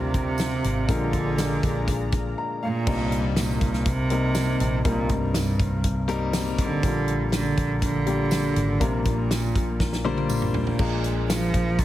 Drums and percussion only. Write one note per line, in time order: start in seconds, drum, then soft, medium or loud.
0.14 kick medium
0.14 closed hi-hat medium
0.38 snare loud
0.38 closed hi-hat medium
0.38 tambourine medium
0.64 closed hi-hat medium
0.89 kick loud
0.89 closed hi-hat loud
1.13 kick medium
1.13 closed hi-hat medium
1.38 snare medium
1.38 closed hi-hat medium
1.38 tambourine medium
1.63 kick medium
1.63 closed hi-hat medium
1.88 kick loud
1.88 closed hi-hat loud
2.12 kick loud
2.12 closed hi-hat medium
2.87 kick loud
2.87 crash medium
3.12 closed hi-hat medium
3.36 snare loud
3.36 closed hi-hat medium
3.36 tambourine medium
3.61 kick medium
3.61 closed hi-hat medium
3.73 snare soft
3.85 kick loud
3.85 closed hi-hat loud
4.10 closed hi-hat medium
4.35 snare loud
4.35 closed hi-hat medium
4.35 tambourine medium
4.60 closed hi-hat medium
4.85 kick loud
4.85 closed hi-hat loud
5.09 kick medium
5.09 closed hi-hat medium
5.34 snare loud
5.34 closed hi-hat medium
5.34 tambourine medium
5.59 kick loud
5.59 closed hi-hat medium
5.84 kick medium
5.84 closed hi-hat medium
6.09 closed hi-hat medium
6.33 snare loud
6.33 closed hi-hat medium
6.33 tambourine medium
6.58 kick loud
6.58 closed hi-hat medium
6.83 kick loud
6.83 closed hi-hat loud
7.08 closed hi-hat medium
7.32 snare loud
7.32 closed hi-hat medium
7.32 tambourine loud
7.57 kick medium
7.57 closed hi-hat medium
7.82 kick loud
7.82 closed hi-hat loud
8.07 closed hi-hat medium
8.31 snare loud
8.31 closed hi-hat medium
8.31 tambourine medium
8.56 closed hi-hat medium
8.81 kick loud
8.81 closed hi-hat loud
9.05 kick medium
9.05 closed hi-hat medium
9.31 snare loud
9.31 closed hi-hat medium
9.31 tambourine medium
9.55 kick medium
9.55 closed hi-hat medium
9.80 kick loud
9.80 snare medium
9.93 snare medium
10.05 high tom medium
10.18 high tom medium
10.29 mid tom medium
10.29 tambourine medium
10.42 mid tom medium
10.54 floor tom loud
10.67 floor tom medium
10.79 kick loud
10.79 crash medium
11.04 closed hi-hat medium
11.30 snare loud
11.30 closed hi-hat medium
11.30 tambourine loud
11.54 kick medium
11.54 closed hi-hat medium
11.79 kick loud
11.79 closed hi-hat loud